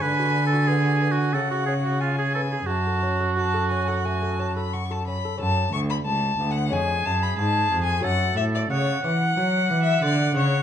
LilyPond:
<<
  \new Staff \with { instrumentName = "Violin" } { \time 4/4 \key fis \minor \tempo 4 = 91 gis''2 fis''4 gis''4 | a''4 a''8 gis''16 fis''16 gis''8 a''16 b''16 cis'''16 a''16 b''8 | a''8 cis'''16 b''16 \tuplet 3/2 { a''4 fis''8 } gis''8 a''16 b''16 \tuplet 3/2 { a''4 gis''8 } | fis''8 e''16 d''16 cis''8 fis''8~ \tuplet 3/2 { fis''4 e''8 } d''8 cis''8 | }
  \new Staff \with { instrumentName = "Oboe" } { \time 4/4 \key fis \minor \tuplet 3/2 { b'4 a'8 gis'4 fis'8 } a'16 fis'16 gis'16 fis'16 eis'16 gis'16 a'16 gis'16 | fis'2. r4 | r2 gis'2 | a'4 fis''2. | }
  \new Staff \with { instrumentName = "Lute" } { \time 4/4 \key fis \minor r16 fis'16 b'16 fis'16 b16 fis'16 b16 fis'16 r16 fis'16 cis''16 fis'16 r16 gis'16 b'16 gis'16 | r16 a'16 cis''16 a'16 fis'16 a'16 cis'16 a'16 a16 a'16 cis''16 a'16 fis'16 a'16 cis'16 a'16 | <cis' a'>2 <gis cis' cis''>2 | <a fis' cis''>1 | }
  \new Staff \with { instrumentName = "Lute" } { \clef bass \time 4/4 \key fis \minor d2 cis2 | fis,2.~ fis,8 r8 | fis,8 d,8 r8 d,8 eis,8 fis,8 gis,8 eis,8 | fis,8 a,8 cis8 e8 fis8 e8 d8 cis8 | }
  \new Staff \with { instrumentName = "Cello" } { \clef bass \time 4/4 \key fis \minor d2 cis2 | fis,2.~ fis,8 r8 | fis,8 d,8 cis,8 d,8 eis,8 fis,8 gis,8 eis,8 | fis,8 a,8 cis8 e8 fis8 e8 d8 cis8 | }
>>